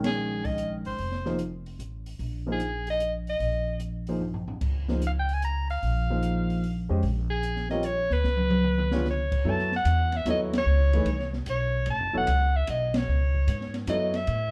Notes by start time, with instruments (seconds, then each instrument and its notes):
Already playing: upright bass A#1, grand piano D#3 G#3 C#4 A#4 G5
0.04 soprano saxophone G#4, snare, ride
0.45 soprano saxophone D#5, kick, open hi-hat
0.58 closed hi-hat
0.85 upright bass G#1, soprano saxophone C5, open hi-hat
0.98 upright bass F1, open hi-hat
1.12 snare
1.26 grand piano F3 A#3 D#4 G#4 C5, snare
1.39 closed hi-hat
1.66 open hi-hat
1.79 upright bass A1, closed hi-hat
2.06 open hi-hat
2.19 upright bass A#1, open hi-hat
2.46 grand piano F3 A#3 D#4 G#4 C5
2.52 soprano saxophone G#4
2.60 closed hi-hat
2.87 soprano saxophone D#5, open hi-hat
3.00 closed hi-hat
3.27 soprano saxophone D#5, open hi-hat
3.40 upright bass A#1, open hi-hat
3.80 closed hi-hat
4.07 grand piano F3 A#3 D#4 G#4 C5, open hi-hat
4.21 floor tom
4.34 floor tom
4.48 floor tom
4.61 upright bass C#2, kick, crash
4.88 grand piano F3 A#3 D#4 G#4 C5, snare
5.02 closed hi-hat
5.07 soprano saxophone F5
5.20 soprano saxophone G5
5.29 open hi-hat
5.33 soprano saxophone G#5
5.42 soprano saxophone A#5, closed hi-hat
5.70 soprano saxophone F5, open hi-hat
5.83 upright bass A#1, open hi-hat
6.10 grand piano F3 A#3 D#4 G#4 C5
6.23 closed hi-hat
6.50 open hi-hat
6.64 open hi-hat
6.89 upright bass F2, grand piano G#3 C#4 G4 C5 D#5
7.03 upright bass A#1, open hi-hat
7.30 soprano saxophone G#4
7.43 closed hi-hat
7.56 snare
7.69 grand piano G3 C4 F4 A#4 C#5, soprano saxophone D#5, snare
7.83 soprano saxophone C#5, closed hi-hat
8.10 upright bass D2, soprano saxophone B4, snare
8.24 upright bass C#2, snare
8.37 high tom
8.50 high tom
8.64 mid tom
8.78 mid tom
8.92 grand piano B3 D4 F4 G#4 C#5, snare
9.05 snare
9.10 soprano saxophone C#5
9.32 kick, crash
9.45 upright bass F#2, grand piano F#3 B3 E4 A4 C#5
9.50 soprano saxophone A5
9.59 snare
9.72 snare
9.76 soprano saxophone F#5
9.85 upright bass E2, hi-hat pedal, ride
10.12 snare, ride
10.17 soprano saxophone E5
10.25 upright bass D#2, grand piano F#3 B3 E4 A4 C#5, snare, hi-hat pedal, ride
10.30 soprano saxophone D#5
10.53 snare, ride
10.58 soprano saxophone C#5
10.66 upright bass C#2
10.93 grand piano E3 A3 D#4 G#4 B4, ride
11.05 upright bass C2, ride
11.20 snare
11.33 snare
11.46 upright bass B1, soprano saxophone C#5, hi-hat pedal, ride
11.86 upright bass A1, ride
11.90 soprano saxophone A5
12.00 upright bass F#1
12.13 upright bass E1, grand piano F#3 B3 E4 A4 C#5
12.17 soprano saxophone F#5
12.27 upright bass C#2, hi-hat pedal, ride
12.56 soprano saxophone E5
12.67 upright bass B1, soprano saxophone D#5, hi-hat pedal, ride
12.94 soprano saxophone C#5, snare, ride
13.08 upright bass C#2
13.34 kick
13.48 upright bass G#2, hi-hat pedal, ride
13.61 snare
13.74 snare, ride
13.87 upright bass F#2, grand piano F#3 B3 E4 A4 C#5, soprano saxophone D#5, hi-hat pedal, ride
14.14 soprano saxophone E5, snare, ride
14.27 upright bass A2, ride